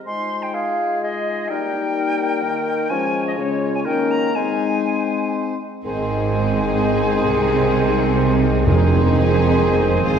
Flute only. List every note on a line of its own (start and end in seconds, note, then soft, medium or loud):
0.06 0.44 C6 medium
0.42 0.55 G5 medium
0.54 1.01 F5 soft
1.02 1.49 D#5 medium
1.48 2.91 G5 medium
2.89 3.25 G#5 medium
3.27 3.32 D#5 medium
3.38 3.73 C#5 medium
3.74 3.80 G#5 medium
3.86 4.12 G5 medium
4.10 4.37 A#5 medium
4.35 5.35 G#5 medium
5.85 8.63 G#5 medium
8.66 10.19 G#5 medium